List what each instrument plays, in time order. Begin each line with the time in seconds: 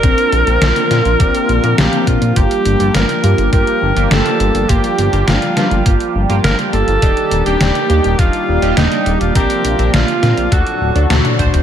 Already playing: analog synth pad A#3, alto saxophone A#4
0.03 analog synth bass A#1, analog synth pad D3 F3 C4 F4, analog polysynth C4 D4 A#4, kick, closed hi-hat
0.18 closed hi-hat
0.32 analog synth bass A#1, closed hi-hat
0.47 analog synth bass A#1, analog polysynth C4 D4 A#4, closed hi-hat
0.61 analog synth bass A#1, snare, closed hi-hat
0.76 closed hi-hat
0.91 analog synth bass A#2, analog polysynth C4 D4 A#4, snare, closed hi-hat
1.05 analog synth bass A#1, closed hi-hat
1.20 analog synth bass A#1, analog polysynth C4 D4 G4, kick, closed hi-hat
1.35 closed hi-hat
1.49 analog synth bass A#1, closed hi-hat
1.64 analog synth bass A#2, analog polysynth C4 D4 A#4, closed hi-hat
1.78 analog synth bass A#1, alto saxophone G4, snare, closed hi-hat
1.93 analog polysynth C4 D4 A#4, closed hi-hat
2.07 analog synth bass A#1, alto saxophone F4, kick, closed hi-hat
2.22 analog synth bass A#2, closed hi-hat
2.36 analog synth bass G1, analog synth pad G3 D4 G4, analog polysynth A#3 F4 G4, alto saxophone G4, kick, closed hi-hat
2.51 closed hi-hat
2.65 analog synth bass G1, closed hi-hat
2.80 analog synth bass G1, analog polysynth A#3 F4 G4, closed hi-hat
2.94 analog synth bass G1, alto saxophone A#4, snare, closed hi-hat
3.09 closed hi-hat
3.24 analog synth bass G2, analog polysynth A#3 F4 G4, closed hi-hat
3.38 analog synth bass G1, closed hi-hat
3.53 analog synth bass G1, analog polysynth A#3 F4 G4, alto saxophone A#4, kick, closed hi-hat
3.67 closed hi-hat
3.82 analog synth bass G1
3.96 analog synth bass G1, analog polysynth A#3 F4 G4, closed hi-hat
4.11 analog synth bass G1, alto saxophone A4, snare, closed hi-hat
4.26 analog polysynth A#3 F4 G4, closed hi-hat
4.40 analog synth bass G1, closed hi-hat
4.55 analog synth bass G1, closed hi-hat
4.69 analog synth bass G1, analog polysynth A#3 F4 G4, alto saxophone G4, kick, closed hi-hat
4.84 closed hi-hat
4.98 analog synth bass G1, closed hi-hat
5.13 analog synth bass G1, analog polysynth A#3 F4 G4, closed hi-hat
5.28 analog synth bass G1, alto saxophone F4, snare, closed hi-hat
5.42 closed hi-hat
5.57 analog synth bass G2, analog polysynth A#3 F4 G4, snare, closed hi-hat
5.71 analog synth bass G1, closed hi-hat
5.86 analog synth bass G1, analog polysynth A#3 F4 G4, kick, closed hi-hat
6.00 closed hi-hat
6.15 analog synth bass G1
6.29 analog synth bass G1, analog polysynth A#3 F4 G4, closed hi-hat
6.44 analog synth bass G1, alto saxophone A#4, snare, closed hi-hat
6.59 analog polysynth A#3 F4 G4, closed hi-hat
6.73 analog synth bass G1, alto saxophone A4, closed hi-hat
6.88 analog synth bass G1, closed hi-hat
7.02 analog synth bass D#1, analog synth pad D#3 A#3 G4 D5, analog polysynth D4 D#4 G4, kick, closed hi-hat
7.17 closed hi-hat
7.31 analog synth bass D#1, closed hi-hat
7.46 analog synth bass D#1, analog polysynth D4 D#4 G4, alto saxophone G4, closed hi-hat
7.61 analog synth bass D#1, snare, closed hi-hat
7.75 closed hi-hat
7.90 analog synth bass D#2, analog polysynth D4 D#4 G4, closed hi-hat
8.04 analog synth bass D#1, closed hi-hat
8.19 analog synth bass D#1, analog polysynth D4 D#4 F4, alto saxophone F4, kick, closed hi-hat
8.33 closed hi-hat
8.48 analog synth bass D#1
8.62 analog synth bass D#1, analog polysynth D4 D#4 G4, closed hi-hat
8.77 analog synth bass D#1, alto saxophone D#4, snare, closed hi-hat
8.92 analog polysynth D4 D#4 G4, closed hi-hat
9.06 analog synth bass D#1, closed hi-hat
9.21 analog synth bass D#1, alto saxophone F4, closed hi-hat
9.35 analog synth bass A#1, analog synth pad C3 F3 F4, analog polysynth C4 D4 A#4, alto saxophone G4, kick, closed hi-hat
9.50 closed hi-hat
9.64 analog synth bass A#1, closed hi-hat
9.79 analog synth bass A#1, analog polysynth C4 D4 A#4, closed hi-hat
9.94 analog synth bass A#1, alto saxophone F4, snare, closed hi-hat
10.08 closed hi-hat
10.23 analog synth bass A#2, analog polysynth C4 D4 A#4, snare, closed hi-hat
10.37 analog synth bass A#1, closed hi-hat
10.52 analog synth bass D2, analog synth pad A2 D3 F#3 F#4, analog polysynth D4 F#4 A4, alto saxophone F#4, kick, closed hi-hat
10.67 closed hi-hat
10.81 analog synth bass D1
10.95 analog synth bass D2, analog polysynth D4 F#4 A4, closed hi-hat
11.10 analog synth bass D2, snare, closed hi-hat, high tom
11.25 analog polysynth D4 F#4 A4, closed hi-hat, high tom
11.39 analog synth bass D2, analog polysynth D4 F#4 C5, kick, closed hi-hat
11.54 analog synth bass D1, closed hi-hat, mid tom